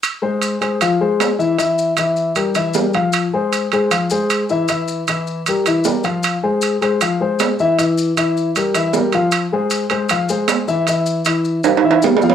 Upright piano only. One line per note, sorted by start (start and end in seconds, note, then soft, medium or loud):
0.22 0.54 G#3 medium
0.22 0.54 G#4 medium
0.22 0.54 C5 medium
0.61 0.77 G#3 medium
0.61 0.77 G#4 medium
0.61 0.77 C5 medium
0.81 0.97 F3 medium
0.81 0.97 F4 medium
0.81 0.97 F5 medium
1.01 1.32 G#3 medium
1.01 1.33 G#4 medium
1.01 1.33 C5 medium
1.39 1.55 E3 medium
1.39 1.55 E4 medium
1.39 1.55 E5 medium
1.58 1.90 E3 medium
1.58 1.90 E4 medium
1.58 1.90 E5 medium
1.98 2.29 E3 medium
1.98 2.30 E4 medium
1.98 2.30 E5 medium
2.36 2.52 G3 medium
2.36 2.52 G4 medium
2.36 2.52 A#4 medium
2.55 2.71 E3 medium
2.55 2.72 E4 medium
2.55 2.72 E5 medium
2.75 2.91 G3 medium
2.75 2.91 G4 medium
2.75 2.91 A#4 medium
2.94 3.26 F3 medium
2.94 3.26 F4 medium
2.94 3.26 F5 medium
3.33 3.65 G#3 medium
3.33 3.65 G#4 medium
3.33 3.65 C5 medium
3.73 3.88 G#3 medium
3.73 3.88 G#4 medium
3.73 3.89 C5 medium
3.91 4.07 F3 medium
3.91 4.07 F4 medium
3.91 4.07 F5 medium
4.11 4.43 G#3 medium
4.11 4.42 G#4 medium
4.11 4.43 C5 medium
4.50 4.65 E3 medium
4.50 4.65 E4 medium
4.50 4.66 E5 medium
4.69 5.00 E3 medium
4.69 5.01 E4 medium
4.69 5.01 E5 medium
5.08 5.39 E3 medium
5.08 5.40 E4 medium
5.08 5.40 E5 medium
5.48 5.63 G3 medium
5.48 5.63 G4 medium
5.48 5.63 A#4 medium
5.66 5.82 E3 medium
5.66 5.82 E4 medium
5.66 5.82 E5 medium
5.86 6.01 G3 medium
5.86 6.01 G4 medium
5.86 6.01 A#4 medium
6.04 6.35 F3 medium
6.04 6.36 F4 medium
6.04 6.36 F5 medium
6.43 6.75 G#3 medium
6.43 6.74 G#4 medium
6.43 6.75 C5 medium
6.81 6.97 G#3 medium
6.81 6.98 G#4 medium
6.81 6.98 C5 medium
7.01 7.17 F3 medium
7.01 7.17 F4 medium
7.01 7.17 F5 medium
7.20 7.52 G#3 medium
7.20 7.52 G#4 medium
7.20 7.52 C5 medium
7.60 7.75 E3 medium
7.60 7.75 E4 medium
7.60 7.75 E5 medium
7.78 8.09 E3 medium
7.78 8.10 E4 medium
7.78 8.10 E5 medium
8.17 8.48 E3 medium
8.17 8.48 E4 medium
8.17 8.49 E5 medium
8.56 8.72 G3 medium
8.56 8.72 G4 medium
8.56 8.72 A#4 medium
8.75 8.90 E3 medium
8.75 8.91 E4 medium
8.75 8.91 E5 medium
8.95 9.10 G3 medium
8.95 9.10 G4 medium
8.95 9.11 A#4 medium
9.14 9.45 F3 medium
9.14 9.45 F4 medium
9.14 9.46 F5 medium
9.52 9.84 G#3 medium
9.52 9.84 G#4 medium
9.52 9.84 C5 medium
9.90 10.06 G#3 medium
9.90 10.06 G#4 medium
9.90 10.06 C5 medium
10.10 10.26 F3 medium
10.10 10.26 F4 medium
10.10 10.26 F5 medium
10.29 10.61 G#3 medium
10.29 10.61 G#4 medium
10.29 10.61 C5 medium
10.68 10.83 E3 medium
10.68 10.83 E4 medium
10.68 10.84 E5 medium
10.88 11.19 E3 medium
10.88 11.19 E4 medium
10.88 11.19 E5 medium
11.26 11.57 E3 medium
11.26 11.58 E4 medium
11.26 11.58 E5 medium
11.65 11.81 G3 medium
11.65 11.81 G4 medium
11.65 11.81 A#4 medium
11.84 11.99 E3 medium
11.84 12.00 E4 medium
11.84 12.00 E5 medium
12.03 12.19 G3 medium
12.03 12.19 G4 medium
12.03 12.19 A#4 medium
12.23 12.35 F3 medium
12.23 12.35 F4 medium
12.23 12.35 F5 medium